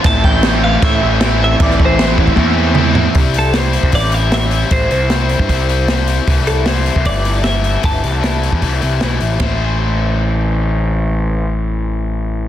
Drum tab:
CC |x---x---x---x---|x---x-----------|----------------|----------------|
RD |----------------|----------------|----------------|----------------|
HH |----------------|----------------|o-o-o-o-o-o-o-o-|o-o-o-o-o-o-o-o-|
SD |----o-------o---|-o--o-----------|----o-------o---|----o-------o---|
T1 |----------------|--------o-------|----------------|----------------|
T2 |----------------|------------o---|----------------|----------------|
FT |----------------|--------------o-|----------------|----------------|
BD |o-o-----o-------|o-o---ooo-------|o------oo-------|o------oo-------|

CC |----------------|----------------|----------------|----------------|
RD |----------------|----------------|b---------------|----------------|
HH |o-o-o-o-o-o-o-o-|o-o-o-o-o-o-o-o-|----------------|----------------|
SD |----o-------o---|----o-------o---|o---------------|----------------|
T1 |----------------|----------------|----------------|----------------|
T2 |----------------|----------------|----------------|----------------|
FT |----------------|----------------|----------------|----------------|
BD |o------oo-------|o------oo-------|o---------------|----------------|